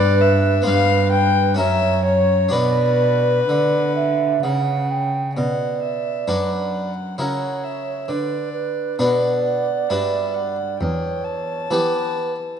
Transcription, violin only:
Already playing: D5
0.21 E5
0.65 F5
1.12 G5
1.58 E5
2.05 C#5
2.53 B4
5.37 F#5
5.83 E5
6.28 F#5
7.19 F#5
7.64 E5
8.09 D5
9.00 F#5
9.44 F#5
9.89 E5
10.34 F#5
10.80 G5
11.24 A5

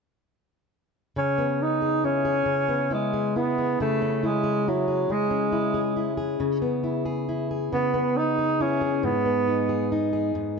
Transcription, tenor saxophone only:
1.18 C#4
1.62 D#4
2.05 C#4
2.93 G#3
3.37 B3
3.81 A3
4.26 G#3
4.69 F#3
5.11 G#3
7.74 B3
8.17 D#4
8.62 C#4
9.04 B3

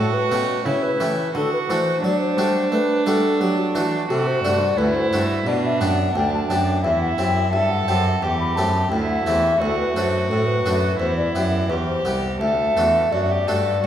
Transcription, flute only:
Already playing: A4
0.13 B4
0.65 C#5
0.83 B4
1.35 A4
1.53 B4
1.68 C5
2.03 D5
2.20 C5
2.72 B4
3.07 A4
3.41 G4
3.59 F#4
4.11 A4
4.27 C5
4.43 D5
4.78 B4
4.95 C5
5.46 D5
5.65 E5
5.80 F#5
6.15 G5
6.34 A5
6.50 G5
6.83 E5
7.02 F#5
7.18 G5
7.52 E5
7.70 F#5
8.21 G5
8.40 B5
8.56 A5
8.91 G5
9.10 F#5
9.25 E5
9.61 A4
9.79 B4
9.95 C5
10.30 A4
10.47 B4
11.00 C5
11.17 D5
11.34 E5
11.69 B4
11.87 C5
12.40 E5
13.12 D5

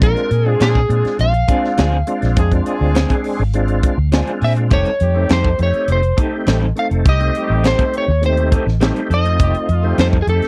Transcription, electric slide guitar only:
0.03 A#4
0.49 G#4
0.62 G#4
1.21 F5
4.44 E5
4.73 C#5
5.33 C5
5.63 C#5
5.92 C5
6.79 F5
7.09 D#5
7.67 C5
7.98 C#5
8.26 C5
9.14 D#5
10.01 C5
10.22 G#4
10.29 A4

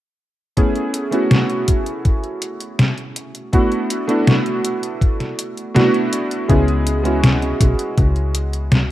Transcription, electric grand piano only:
0.57 A3 B3 C#4 E4 G#4
1.11 A3 B3 C#4 E4 F#4
3.53 A3 B3 D4 E4 F#4
4.07 A3 B3 D4 E4 F#4
5.74 A3 B3 D4 E4 F#4
6.48 G#3 B3 C#4 E4 G#4
7.03 G#3 B3 C#4 E4 F#4

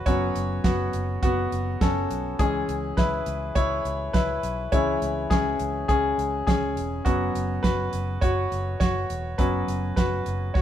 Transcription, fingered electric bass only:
0.06 F#1
0.36 F#1
0.64 F#1
0.94 F#1
1.23 F#1
1.52 F#1
1.81 F#1
2.10 B1
2.40 C#2
2.69 C#2
2.98 C#2
3.27 C#2
3.56 C#2
3.85 C#2
4.14 C#2
4.43 B1
4.73 C#2
5.02 C#2
5.31 C#2
5.60 C#2
5.89 C#2
6.18 C#2
6.48 C#2
6.76 E1
7.06 F#1
7.35 F#1
7.64 F#1
7.93 F#1
8.22 F#1
8.52 F#1
8.81 F#1
9.10 E1
9.39 F#1
9.68 F#1
9.97 F#1
10.26 F#1
10.55 F#1

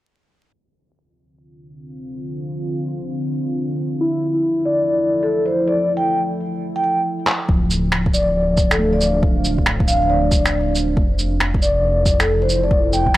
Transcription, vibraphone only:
4.65 D5
5.23 A4
5.46 C5
5.68 D5
5.97 G5
6.76 G5
6.84 G5
8.14 D5
8.71 A4
8.93 D5
9.88 F5
10.02 F5
10.10 D5
11.62 D5
12.20 A4
12.42 C5
12.64 D5
12.93 G5

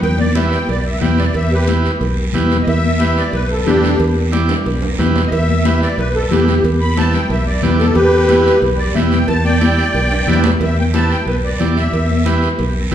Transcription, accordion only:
0.02 G5
0.20 D5
0.36 E5
0.48 F#5
0.53 G5
0.70 D5
0.86 E5
0.98 F#5
1.03 G5
1.19 D5
1.36 E5
1.53 G4 B4
2.63 D#5
2.68 E5
3.17 D5
3.33 B4
3.50 A4
3.66 D4 G4
5.27 D#5
5.32 E5
5.82 D5
5.99 B4
6.15 A4
6.32 G4
6.81 B5
6.98 A5
7.14 G5
7.30 E5
7.46 D5
7.63 B4
7.79 A4
7.95 G4 B4
8.78 D5
8.95 E5
9.11 G5
9.28 A5
9.44 D5 G5
10.63 E5
10.79 G5
10.94 A5
11.11 G5
11.28 B4
11.44 D5
11.77 E5

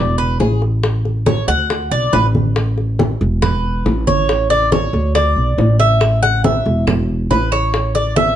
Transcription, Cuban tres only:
Already playing: D5
0.18 B4
0.40 G#4
1.26 C#5
1.48 F#5
1.91 D5
2.13 B4
3.42 B4
4.07 C#5
4.50 D5
4.72 C#5
5.15 D5
5.80 E5
6.23 F#5
6.44 E5
7.31 B4
7.52 C#5
7.95 D5
8.16 E5

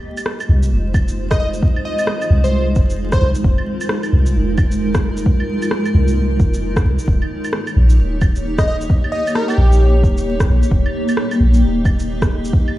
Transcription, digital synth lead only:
1.31 D#5
1.40 D#5
1.85 D#5
2.44 C5
3.13 C5
3.21 C5
8.59 D#5
8.68 D#5
9.12 D#5
9.35 A#4
9.48 G4

